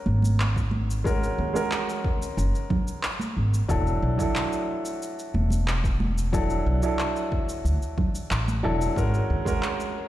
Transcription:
0.00 1.04 G#3 medium
0.00 1.05 C#4 medium
0.00 1.06 F#4 medium
0.00 1.06 A#4 medium
0.06 1.30 G#1 medium
0.06 high conga medium
0.22 high conga medium
0.22 shaker medium
0.40 clap loud
0.40 shaker medium
0.56 kick medium
0.56 shaker soft
0.71 high conga medium
0.91 shaker medium
1.04 1.51 G#3 medium
1.04 1.51 C#4 medium
1.04 1.51 F#4 medium
1.04 1.52 A#4 medium
1.04 kick loud
1.04 shaker medium
1.23 shaker soft
1.38 1.50 D#2 medium
1.54 3.65 G#3 medium
1.54 3.65 C#4 medium
1.54 3.65 F#4 medium
1.54 3.66 A#4 medium
1.54 shaker medium
1.71 clap loud
1.71 shaker medium
1.89 shaker soft
2.04 kick loud
2.22 shaker medium
2.37 2.49 F#1 medium
2.37 shaker medium
2.55 shaker soft
2.70 kick loud
2.70 low conga medium
2.88 shaker medium
3.03 clap loud
3.03 shaker medium
3.20 high conga medium
3.20 shaker soft
3.37 3.60 G#1 medium
3.54 shaker medium
3.68 3.92 E1 medium
3.68 4.15 F#3 medium
3.68 4.15 D4 medium
3.68 4.15 E4 medium
3.68 4.16 A4 medium
3.68 kick loud
3.68 shaker medium
3.87 shaker soft
4.02 4.14 B1 medium
4.18 6.28 F#3 medium
4.18 6.29 D4 medium
4.18 6.30 E4 medium
4.18 6.30 A4 medium
4.18 kick loud
4.18 shaker medium
4.36 clap loud
4.36 shaker medium
4.53 shaker soft
4.85 shaker medium
5.02 shaker medium
5.19 shaker soft
5.34 6.58 E1 medium
5.34 high conga medium
5.50 high conga medium
5.50 shaker medium
5.68 clap loud
5.68 shaker medium
5.84 kick loud
5.84 shaker soft
6.00 high conga medium
6.18 shaker medium
6.33 6.79 F#3 medium
6.33 6.79 D4 medium
6.33 6.79 E4 medium
6.33 6.79 A4 medium
6.33 kick loud
6.33 shaker medium
6.50 shaker soft
6.66 6.78 B1 medium
6.82 8.60 F#3 medium
6.82 8.61 D4 medium
6.82 8.61 E4 medium
6.82 8.62 A4 medium
6.82 shaker medium
6.99 clap medium
6.99 shaker medium
7.16 shaker soft
7.32 kick medium
7.49 shaker medium
7.65 7.77 D2 medium
7.65 shaker medium
7.82 shaker soft
7.98 kick loud
7.98 low conga medium
8.15 shaker medium
8.31 8.65 A1 medium
8.31 clap medium
8.31 shaker medium
8.48 high conga medium
8.48 shaker soft
8.63 8.87 E1 medium
8.63 8.93 F#3 medium
8.63 8.93 D4 medium
8.63 8.93 E4 medium
8.63 8.93 A4 medium
8.82 shaker medium
8.96 9.20 G#1 medium
8.96 9.42 G#3 medium
8.96 9.43 C#4 medium
8.96 9.43 F#4 medium
8.96 9.43 A#4 medium
8.96 kick loud
8.96 shaker medium
9.14 shaker soft
9.30 9.42 D#2 medium
9.45 10.08 G#3 medium
9.45 10.08 C#4 medium
9.45 10.08 F#4 medium
9.45 10.08 A#4 medium
9.45 kick loud
9.45 shaker medium
9.63 clap medium
9.63 shaker medium
9.80 shaker soft

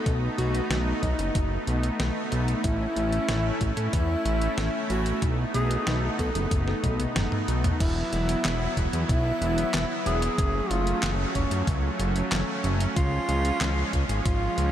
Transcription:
0.00 7.77 A3 medium
0.00 2.60 B3 medium
0.00 2.60 D#4 medium
0.00 0.15 A4 medium
0.06 0.29 B1 loud
0.06 kick loud
0.06 closed hi-hat medium
0.38 0.61 B1 medium
0.38 0.80 F#4 medium
0.38 closed hi-hat medium
0.55 closed hi-hat medium
0.70 0.93 B1 medium
0.70 snare loud
0.70 closed hi-hat medium
1.03 1.14 B1 loud
1.03 1.45 D#4 medium
1.03 kick medium
1.03 closed hi-hat medium
1.19 1.30 F#1 medium
1.19 closed hi-hat medium
1.35 1.58 F#1 medium
1.35 kick loud
1.35 closed hi-hat medium
1.67 1.90 B1 loud
1.67 closed hi-hat medium
1.83 closed hi-hat medium
2.00 2.11 B1 loud
2.00 snare loud
2.00 closed hi-hat medium
2.32 2.55 B1 medium
2.32 closed hi-hat medium
2.48 closed hi-hat medium
2.64 2.87 A1 loud
2.64 5.20 C#4 medium
2.64 5.20 E4 medium
2.64 3.80 E4 loud
2.64 kick loud
2.64 closed hi-hat medium
2.96 3.19 A1 medium
2.96 closed hi-hat medium
3.13 closed hi-hat medium
3.29 3.51 A1 medium
3.29 snare loud
3.29 closed hi-hat medium
3.61 3.72 A1 loud
3.61 kick medium
3.61 closed hi-hat medium
3.77 3.88 A2 medium
3.77 closed hi-hat medium
3.93 4.16 E2 medium
3.93 4.77 E4 loud
3.93 kick loud
3.93 closed hi-hat medium
4.25 4.48 A1 loud
4.25 closed hi-hat medium
4.42 closed hi-hat medium
4.58 4.69 A1 loud
4.58 snare loud
4.58 closed hi-hat medium
4.90 5.13 A1 medium
4.90 5.32 F#4 medium
4.90 closed hi-hat medium
5.06 closed hi-hat medium
5.22 5.45 B1 medium
5.22 7.78 B3 medium
5.22 7.78 D#4 medium
5.22 kick loud
5.22 closed hi-hat medium
5.54 5.77 B1 medium
5.54 5.96 G#4 medium
5.54 closed hi-hat medium
5.71 closed hi-hat medium
5.87 6.10 B1 medium
5.87 snare loud
5.87 closed hi-hat medium
6.19 6.30 B1 loud
6.19 6.61 A4 medium
6.19 kick medium
6.19 closed hi-hat medium
6.35 6.47 F#1 medium
6.35 closed hi-hat medium
6.51 6.74 F#1 medium
6.51 kick loud
6.51 closed hi-hat medium
6.68 snare soft
6.84 7.06 B1 loud
6.84 kick medium
6.84 closed hi-hat medium
6.84 high tom medium
7.00 closed hi-hat medium
7.00 high tom medium
7.16 7.27 F#1 medium
7.16 snare loud
7.16 closed hi-hat medium
7.16 mid tom medium
7.32 mid tom medium
7.48 7.71 B1 medium
7.48 closed hi-hat medium
7.64 closed hi-hat medium
7.64 mid tom medium
7.80 8.03 E1 loud
7.80 10.36 F#3 medium
7.80 10.36 B3 medium
7.80 8.96 E4 loud
7.80 10.36 E4 medium
7.80 kick loud
7.80 closed hi-hat loud
7.80 crash loud
8.13 8.35 E1 medium
8.13 closed hi-hat medium
8.29 closed hi-hat medium
8.45 8.68 E1 medium
8.45 snare loud
8.45 clap loud
8.45 closed hi-hat loud
8.77 8.88 E1 loud
8.77 kick medium
8.77 closed hi-hat medium
8.93 9.05 E2 medium
8.93 closed hi-hat medium
9.09 9.32 B1 medium
9.09 9.93 E4 loud
9.09 kick loud
9.09 closed hi-hat loud
9.41 9.64 E1 loud
9.41 closed hi-hat medium
9.58 closed hi-hat medium
9.74 9.85 E1 loud
9.74 snare loud
9.74 clap loud
9.74 closed hi-hat loud
10.06 10.29 E1 loud
10.06 10.72 G#4 medium
10.06 closed hi-hat medium
10.22 closed hi-hat medium
10.38 10.61 F#1 loud
10.38 12.94 F#3 medium
10.38 12.94 A3 medium
10.38 14.72 C#4 medium
10.38 kick loud
10.38 closed hi-hat loud
10.71 10.93 F#1 medium
10.71 11.12 F4 medium
10.71 closed hi-hat medium
10.87 closed hi-hat medium
11.03 11.26 F#1 medium
11.03 snare loud
11.03 clap loud
11.03 closed hi-hat loud
11.35 11.47 F#1 loud
11.35 11.77 C#4 medium
11.35 kick medium
11.35 closed hi-hat medium
11.51 11.63 F#2 medium
11.51 closed hi-hat medium
11.67 11.90 C#2 medium
11.67 kick loud
11.67 closed hi-hat loud
12.00 12.22 F#1 loud
12.00 closed hi-hat medium
12.16 closed hi-hat medium
12.32 12.43 F#1 loud
12.32 snare loud
12.32 clap loud
12.32 closed hi-hat loud
12.64 12.87 F#1 loud
12.64 closed hi-hat medium
12.80 closed hi-hat medium
12.96 13.19 C#2 medium
12.96 14.72 F3 medium
12.96 14.72 G#3 medium
12.96 14.13 F4 loud
12.96 kick loud
12.96 closed hi-hat loud
13.29 13.52 C#2 medium
13.29 closed hi-hat medium
13.45 closed hi-hat medium
13.61 13.84 C#2 medium
13.61 snare loud
13.61 clap medium
13.61 closed hi-hat loud
13.93 14.05 C#2 loud
13.93 kick medium
13.93 closed hi-hat medium
14.09 14.21 G#1 medium
14.09 closed hi-hat medium
14.25 14.48 G#1 medium
14.25 14.72 F4 loud
14.25 kick loud
14.25 closed hi-hat loud
14.58 14.72 C#2 loud
14.58 closed hi-hat medium

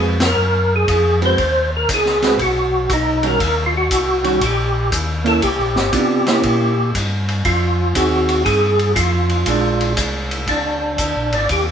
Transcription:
0.00 0.35 F2 medium
0.00 0.17 G#3 medium
0.00 0.17 C4 medium
0.00 0.17 F#4 medium
0.00 0.17 B4 medium
0.20 snare medium
0.20 ride medium
0.25 0.74 A#4 loud
0.36 0.85 F#2 medium
0.76 1.20 G#4 medium
0.88 1.36 F2 medium
0.88 kick soft
0.88 hi-hat pedal soft
0.88 ride medium
1.21 1.36 G#3 soft
1.21 1.36 C4 medium
1.21 1.36 F#4 medium
1.21 1.36 B4 medium
1.21 ride soft
1.26 1.70 C5 loud
1.38 1.87 D#2 medium
1.38 kick soft
1.38 ride medium
1.77 1.90 A#4 medium
1.88 2.37 C#2 medium
1.88 kick soft
1.88 hi-hat pedal medium
1.88 ride medium
1.94 2.38 G#4 medium
2.06 snare soft
2.22 2.37 G#3 medium
2.22 2.38 C4 medium
2.22 2.38 F#4 medium
2.22 2.38 B4 medium
2.22 snare soft
2.22 ride soft
2.39 2.88 B1 medium
2.39 2.92 F#4 medium
2.39 kick soft
2.39 ride medium
2.89 3.38 B1 medium
2.89 kick soft
2.89 hi-hat pedal soft
2.89 ride medium
2.93 3.26 D#4 medium
3.23 3.38 D#3 medium
3.23 3.38 G3 medium
3.23 3.38 C#4 medium
3.23 3.38 F#4 medium
3.23 ride soft
3.27 3.64 A#4 loud
3.40 3.89 D#2 medium
3.40 kick soft
3.40 ride medium
3.66 3.75 F4 medium
3.77 4.45 F#4 medium
3.91 4.40 C2 medium
3.91 kick soft
3.91 hi-hat pedal medium
3.91 ride medium
4.24 4.39 D#3 medium
4.24 4.39 G3 medium
4.24 4.39 C#4 medium
4.24 4.40 F#4 medium
4.24 ride soft
4.41 4.90 A#1 medium
4.41 kick soft
4.41 ride medium
4.46 4.90 G4 medium
4.92 5.41 D#2 medium
4.92 kick soft
4.92 hi-hat pedal medium
4.92 ride medium
5.24 5.40 A#3 medium
5.24 5.40 C#4 medium
5.24 5.41 E4 medium
5.24 5.44 A4 loud
5.24 ride soft
5.42 5.59 C2 medium
5.42 6.90 G4 medium
5.42 kick soft
5.42 ride medium
5.59 5.76 A#1 medium
5.75 5.91 G1 medium
5.75 snare medium
5.92 6.42 C3 medium
5.92 6.23 B3 medium
5.92 6.24 D4 medium
5.92 6.24 F4 medium
5.92 kick soft
5.92 hi-hat pedal soft
5.92 ride medium
6.27 6.71 A#3 medium
6.27 6.71 C#4 medium
6.27 6.71 E4 medium
6.27 snare medium
6.27 ride soft
6.43 6.92 A#2 medium
6.43 kick soft
6.43 ride medium
6.94 7.43 G2 medium
6.94 kick soft
6.94 hi-hat pedal soft
6.94 ride medium
7.28 ride soft
7.45 7.94 F2 medium
7.45 7.97 F4 medium
7.45 kick soft
7.45 ride medium
7.95 8.44 D#2 medium
7.95 8.73 C4 medium
7.95 8.73 D#4 medium
7.95 8.43 F#4 medium
7.95 8.73 G#4 medium
7.95 kick soft
7.95 hi-hat pedal medium
7.95 ride medium
8.29 ride soft
8.45 8.95 G2 medium
8.45 8.92 G#4 loud
8.45 kick soft
8.45 ride medium
8.79 ride soft
8.96 9.45 F2 medium
8.96 9.93 F4 medium
8.96 kick soft
8.96 hi-hat pedal medium
8.96 ride medium
9.29 ride soft
9.46 9.95 A#1 medium
9.46 10.88 G#3 medium
9.46 10.90 D4 medium
9.46 kick soft
9.46 ride medium
9.81 ride soft
9.97 10.46 C2 medium
9.97 kick soft
9.97 hi-hat pedal medium
9.97 ride medium
10.31 ride soft
10.47 10.97 C#2 medium
10.47 11.35 D4 medium
10.47 kick soft
10.47 ride medium
10.98 11.14 D2 medium
10.98 kick soft
10.98 hi-hat pedal soft
10.98 ride medium
11.15 11.32 A#1 medium
11.31 11.47 G#1 medium
11.31 11.50 D5 medium
11.31 ride soft
11.49 11.71 D#2 medium
11.49 11.66 G4 medium
11.49 kick soft
11.49 ride medium

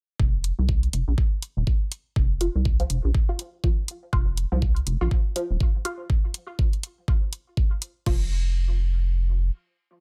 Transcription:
0.19 0.52 F1 medium
0.19 kick loud
0.44 closed hi-hat medium
0.59 0.89 C2 medium
0.69 kick loud
0.83 closed hi-hat soft
0.93 1.04 F1 medium
0.93 closed hi-hat medium
1.08 1.15 A#1 medium
1.18 kick loud
1.42 closed hi-hat medium
1.57 1.64 D#1 loud
1.67 kick loud
1.92 closed hi-hat medium
2.16 2.49 F1 medium
2.16 kick loud
2.41 2.44 F4 medium
2.41 closed hi-hat medium
2.55 2.85 C2 medium
2.65 kick loud
2.80 2.84 F3 medium
2.80 closed hi-hat soft
2.90 3.00 F1 medium
2.90 closed hi-hat medium
3.04 3.12 A#1 loud
3.15 kick loud
3.29 3.32 F4 medium
3.39 closed hi-hat medium
3.64 3.70 F3 medium
3.64 kick loud
3.88 closed hi-hat loud
4.13 4.45 F1 medium
4.13 4.17 F4 medium
4.13 kick loud
4.37 closed hi-hat medium
4.52 4.82 C2 medium
4.52 4.56 F3 medium
4.62 kick loud
4.76 closed hi-hat soft
4.87 4.97 F1 medium
4.87 closed hi-hat loud
5.01 5.08 A#1 loud
5.01 5.04 F4 medium
5.11 kick loud
5.36 5.42 F3 medium
5.36 closed hi-hat loud
5.50 5.58 D#1 loud
5.60 kick loud
5.85 5.89 F4 medium
5.85 closed hi-hat loud
6.10 kick loud
6.34 closed hi-hat loud
6.59 kick loud
6.73 closed hi-hat soft
6.83 closed hi-hat loud
7.08 kick loud
7.33 closed hi-hat medium
7.57 kick loud
7.82 closed hi-hat loud
8.06 9.50 F1 medium
8.06 8.29 F3 loud
8.06 kick loud
8.06 crash medium

